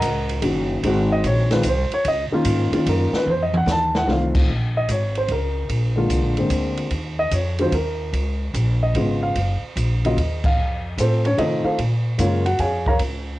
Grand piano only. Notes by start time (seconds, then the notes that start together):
Already playing: A#4 D#5 F#5 A#5
0.42 D#3 A#3 C#4 F#4
0.84 D#3 G#3 C4 F#4
1.12 D#5
1.26 C#5
1.51 D#3 G#3 C4 F4 B4
1.68 C5
1.94 C#5
2.08 D#5
2.32 D#3 A#3 C#4 F4
2.73 D#3 A#3 C#4 F4
2.89 A#4
3.16 B4
3.30 C5
3.42 D#5
3.57 F#5
3.71 A5
3.97 F#5
4.07 D#3 A3 C4 F4 F5
4.77 D#5
4.91 C#5
5.18 C5
5.32 A#4
5.96 D3 G#3 A#3 F4
6.38 D3 G#3 A#3 C4
7.19 D#5
7.34 C#5
7.59 D#3 F#3 C#4 F4 C5
7.74 A#4
8.83 D#5
8.95 C#3 G#3 B3 F4
9.23 F5
10.05 C#3 F#3 A#3 F4 D#5
10.46 F5
11.00 C4 F4 A4 C5
11.26 C#4 C#5
11.38 D#3 A3 C4 D#4 F4 A4 C5 D#5
11.64 F4 A4 C5 F5
12.18 C#3 G#3 A#3 F4 A#4 C#5 F5
12.46 F#4 F#5
12.60 G#4 C#5 F5 G#5
12.88 A#4 C#5 F5 A#5